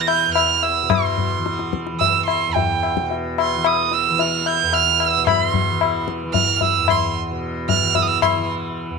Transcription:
Already playing: tanpura E2 B2 E3
0.01 violin A#6
0.07 violin G6, tabla na
0.27 tanpura E2
0.35 violin F6, tabla na
0.63 violin E6, tabla na
0.82 tanpura B2
0.89 violin C6, tabla na, tabla ge
1.18 tabla ge
1.38 tanpura E3
1.46 tabla te
1.59 tabla te
1.73 tabla ke
1.87 tabla te
1.93 tanpura E3
2.00 violin E6, tabla tin, tabla ge
2.26 violin C6, tabla na
2.48 tanpura E2
2.53 violin G5, tabla tin, tabla ge
2.83 tabla na
2.97 tabla ke
3.02 tanpura B2
3.11 tabla tin
3.38 violin C6, tabla na
3.56 tanpura E3
3.64 violin D#6, tabla na
3.91 violin E6, tabla te
4.10 tanpura E3
4.19 violin F6, tabla tin
4.46 violin G6, tabla na
4.63 tanpura E2
4.73 violin F6, tabla na
5.00 violin E6, tabla na
5.17 tanpura B2
5.27 violin B5, tabla na, tabla ge
5.47 violin C6
5.54 tabla ge
5.70 tanpura E3
5.81 tabla na
6.08 tabla ke
6.23 tanpura E3
6.34 violin F6, tabla tin, tabla ge
6.56 violin F6
6.61 violin E6, tabla tin, tabla ge
6.77 tanpura E2
6.88 violin C6, tabla na, tabla ge
7.31 tanpura B2
7.69 violin F6, tabla tin, tabla ge
7.82 tanpura E3
7.95 violin E6, tabla tin, tabla ge
8.02 violin D#6
8.07 violin E6
8.22 violin C6, tabla na, tabla ge
8.36 tanpura E3
8.90 tanpura E2

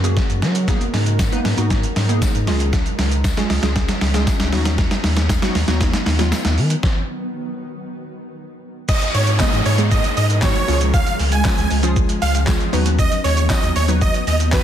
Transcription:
Already playing: sub bass F#2, ambient pad C#3 F#3 G#3 F#4 A#4
0.04 synth pluck A#3 C#4 F#4 G#4, closed hi-hat, shaker
0.17 kick, snare, shaker
0.29 sub bass F#2, closed hi-hat, shaker
0.42 sub bass F#3, snare, shaker
0.55 closed hi-hat, shaker
0.68 ambient pad B2 D#3 D#4, synth pluck A#3 B3 D#4 G#4, kick, snare, shaker
0.81 closed hi-hat, shaker
0.94 sub bass G#2, snare, open hi-hat, shaker
1.06 closed hi-hat, shaker
1.19 kick, snare, tambourine, shaker
1.32 synth pluck A#3 B3 D#4 B4, closed hi-hat, shaker
1.45 sub bass G#2, snare, open hi-hat, shaker
1.57 sub bass G#2, synth pluck A#3 B3 D#4 F#4, closed hi-hat, shaker
1.70 kick, snare, shaker
1.83 closed hi-hat, shaker
1.96 sub bass G#2, snare, open hi-hat, shaker
2.09 synth pluck A#3 B3 D#4 G#4, closed hi-hat, shaker
2.22 kick, snare, tambourine, shaker
2.35 sub bass G#2, closed hi-hat, shaker
2.47 sub bass C#2, ambient pad F3 C#4, synth pluck G#3 C#4 F4 G#4, snare, open hi-hat, shaker
2.60 closed hi-hat, shaker
2.73 kick, snare, shaker
2.86 closed hi-hat, shaker
2.99 sub bass C#2, snare, open hi-hat, shaker
3.11 closed hi-hat, shaker
3.24 kick, snare, tambourine, shaker
3.37 synth pluck G#3 C#4 F4 G#4, snare, closed hi-hat, shaker
3.50 sub bass C#2, snare, open hi-hat, shaker
3.63 sub bass C#2, synth pluck G#3 C#4 F4 G#4, snare, closed hi-hat, shaker
3.76 kick, snare, shaker
3.89 snare, closed hi-hat, shaker
4.01 sub bass C#2, snare, open hi-hat, shaker
4.14 synth pluck G#3 C#4 F4 G#4, snare, closed hi-hat, shaker
4.27 kick, snare, tambourine, shaker
4.40 sub bass C#2, snare, closed hi-hat, shaker
4.52 sub bass D#2, ambient pad D#3 F#3 B3, synth pluck F#3 B3 D#4 F#4, snare, open hi-hat, shaker
4.65 snare, closed hi-hat, shaker
4.78 kick, snare, shaker
4.91 snare, closed hi-hat, shaker
5.04 sub bass D#2, snare, open hi-hat, shaker
5.16 snare, closed hi-hat, shaker
5.29 kick, snare, tambourine, shaker
5.42 synth pluck F#3 B3 D#4 F#4, snare, closed hi-hat, shaker
5.55 sub bass D#2, snare, open hi-hat, shaker
5.68 sub bass D#2, synth pluck F#3 B3 D#4 F#4, snare, closed hi-hat, shaker
5.81 kick, snare, shaker
5.93 snare, closed hi-hat, shaker
6.06 sub bass D#2, snare, open hi-hat, shaker
6.19 synth pluck F#3 B3 D#4 F4, snare, closed hi-hat, shaker
6.32 snare, tambourine, shaker
6.45 sub bass D#2, snare, closed hi-hat, shaker
6.58 sub bass D#3, open hi-hat, shaker
6.70 closed hi-hat, shaker
6.83 kick, snare
8.88 ambient pad B2 D#3 G#3 D#4 A#4, supersaw synth D#5, kick, crash, downlifter, shaker
9.02 closed hi-hat, shaker
9.14 sub bass G#2, supersaw synth C#5, open hi-hat, shaker
9.27 closed hi-hat, shaker
9.40 synth pluck G#3 A#3 B3 D#4 G#4, supersaw synth D#5, kick, snare, clap, tambourine, shaker
9.53 sub bass G#2, closed hi-hat, shaker
9.65 sub bass G#2, supersaw synth C#5, open hi-hat, shaker
9.78 synth pluck G#3 A#3 B3 D#4 G#4, closed hi-hat, shaker
9.91 supersaw synth D#5, kick, shaker
10.04 closed hi-hat, shaker
10.17 sub bass G#2, supersaw synth D#5, open hi-hat, shaker
10.30 closed hi-hat, shaker
10.42 synth pluck G#3 A#3 B3 D#4 F#4, supersaw synth C#5, kick, snare, clap, tambourine, shaker
10.55 closed hi-hat, shaker
10.68 sub bass C#2, synth pluck F3 G#3 C#4 F4 G#4, ambient pad F3 C#4, open hi-hat, shaker
10.81 closed hi-hat, shaker
10.94 supersaw synth F5, kick, shaker
11.07 closed hi-hat, shaker
11.19 sub bass C#2, open hi-hat, shaker
11.32 supersaw synth G#5, closed hi-hat, shaker
11.45 synth pluck F3 G#3 C#4 F4 G#4, kick, snare, clap, tambourine, shaker
11.58 sub bass C#2, closed hi-hat, shaker
11.70 sub bass C#2, open hi-hat, shaker
11.83 synth pluck F3 G#3 C#4 F4 G#4, closed hi-hat, shaker
11.96 kick, shaker
12.09 closed hi-hat, shaker
12.22 sub bass C#2, supersaw synth F5, open hi-hat, shaker
12.35 closed hi-hat, shaker
12.47 synth pluck F3 G#3 C#4 F4 G#4, kick, snare, clap, tambourine, shaker
12.60 closed hi-hat, shaker
12.73 sub bass D#2, synth pluck F#3 B3 D#4 F#4 B4, ambient pad F#3 B3 D#4, open hi-hat, shaker
12.86 closed hi-hat, shaker
12.99 supersaw synth D#5, kick, shaker
13.12 closed hi-hat, shaker
13.24 sub bass D#2, supersaw synth C#5, open hi-hat, shaker
13.37 closed hi-hat, shaker
13.50 synth pluck F#3 B3 D#4 F#4 C#5, supersaw synth D#5, kick, snare, clap, tambourine, shaker
13.63 sub bass D#2, closed hi-hat, shaker
13.76 sub bass D#2, supersaw synth C#5, open hi-hat, shaker
13.88 synth pluck F#3 B3 D#4 F#4 B4, closed hi-hat, shaker
14.01 supersaw synth D#5, kick, shaker
14.14 closed hi-hat, shaker
14.27 sub bass D#2, supersaw synth D#5, open hi-hat, shaker
14.40 closed hi-hat, shaker
14.52 synth pluck F#3 B3 D#4 F#4 B4, supersaw synth B4, kick, snare, clap, tambourine, shaker

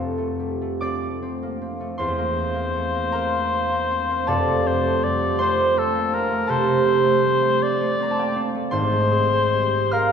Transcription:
Already playing: harp F1 F2 A3 C4 F4 A4 A5
0.18 harp A3
0.40 harp G3
0.61 harp A3
0.81 harp C4 D5 D6
1.03 harp A3
1.22 harp C4
1.43 harp A#3
1.62 harp C4
1.80 harp A3
1.98 harp E2 C5 C6, cor anglais C5
2.18 harp A#3
2.37 harp C4
2.55 harp A#3
2.75 harp A3
2.95 harp A#3
3.12 harp C4 A#4 A#5
3.34 harp A#3
3.53 harp C4
3.72 harp A#3
3.91 harp C4
4.10 harp A#3
4.27 harp F1 F2 A4 A5, cor anglais D5
4.48 harp A3
4.66 harp C4, cor anglais C5
4.85 harp A3
5.03 harp G3, cor anglais D5
5.22 harp A3
5.39 harp C4 C5 C6, cor anglais C5
5.58 harp A3
5.76 harp C4, cor anglais A4
5.95 harp A#3
6.13 harp C4, cor anglais A#4
6.31 harp A3
6.47 harp C3 A4 A5, cor anglais C5
6.67 harp A3
6.85 harp C4
7.04 harp A3
7.23 harp G3
7.42 harp A3
7.62 harp C4, cor anglais D5
7.81 harp A3
8.00 harp C4 A#5
8.11 harp A5
8.18 harp A#3 G5
8.27 harp A5
8.36 harp C4
8.55 harp A3
8.71 harp G#1 G#2 C5 C6, cor anglais C5
8.92 harp G#3
9.11 harp G#4
9.31 harp G#3
9.53 harp G3
9.73 harp G#3
9.91 harp G#4 F5 F6, cor anglais A#4

